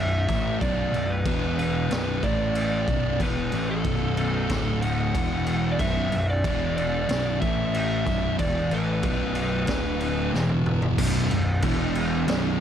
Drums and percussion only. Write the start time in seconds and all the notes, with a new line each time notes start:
0.29 kick, snare, crash
0.61 kick, crash
0.94 crash
1.25 kick, crash
1.59 crash
1.91 snare, crash
2.23 kick, crash
2.55 crash
2.88 kick, crash
3.20 kick, crash
3.52 crash
3.84 kick, crash
4.17 crash
4.49 kick, snare, crash
4.82 crash
5.15 kick, crash
5.46 crash
5.79 kick, crash
6.12 crash
6.44 kick, crash
6.78 crash
7.09 snare, crash
7.42 kick, crash
7.74 crash
8.07 kick, snare, crash
8.39 kick, crash
8.71 crash
9.03 kick, crash
9.35 crash
9.67 kick, snare, crash
10.01 crash
10.34 snare
10.49 high tom
10.66 mid tom
10.82 floor tom
10.98 kick, crash
11.31 crash
11.62 kick, crash
11.95 crash
12.28 snare, crash